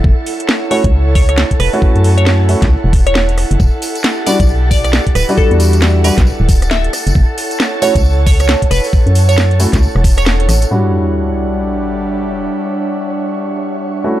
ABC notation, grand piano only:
X:1
M:4/4
L:1/16
Q:"Swing 16ths" 1/4=135
K:Edor
V:1 name="Grand piano"
z6 [A,CEF] z8 [A,CEF]- | [A,CEF]6 [A,CEF] z8 z | z6 [G,DEF] z8 [G,DEF]- | [G,DEF]6 [G,DEF] z8 z |
z6 [A,CEF] z8 z | z6 [A,CEF] z8 z | [G,DEF]16- | [G,DEF]12- [G,DEF]2 [A,CEF]2 |]